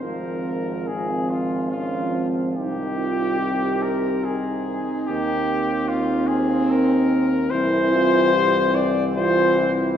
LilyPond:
<<
  \new Staff \with { instrumentName = "Flugelhorn" } { \time 3/4 \key c \phrygian \tempo 4 = 72 bes'4 aes'8 f'8 f'8 r8 | g'4. bes'8 aes'4 | g'4 f'8 aes'8 bes'4 | \key c \major c''4. d''8 c''8 r8 | }
  \new Staff \with { instrumentName = "French horn section" } { \time 3/4 \key c \phrygian f'4 c'4 des'8 c'8 | ees'8 f'8 g'4 ees'4~ | ees'4 c'2 | \key c \major e'8 f'8 g'4 f'8 e'8 | }
  \new Staff \with { instrumentName = "Trombone section" } { \time 3/4 \key c \phrygian c'4 c'4 c'4 | c'2. | c'2. | \key c \major c'2 c'4 | }
  \new Staff \with { instrumentName = "Trombone" } { \clef bass \time 3/4 \key c \phrygian f4 f4 f4 | ees2~ ees8 r8 | ees2. | \key c \major e2 e4 | }
  \new Staff \with { instrumentName = "Tuba" } { \clef bass \time 3/4 \key c \phrygian aes,,2. | c,2~ c,8 r8 | ees,2. | \key c \major c,2. | }
>>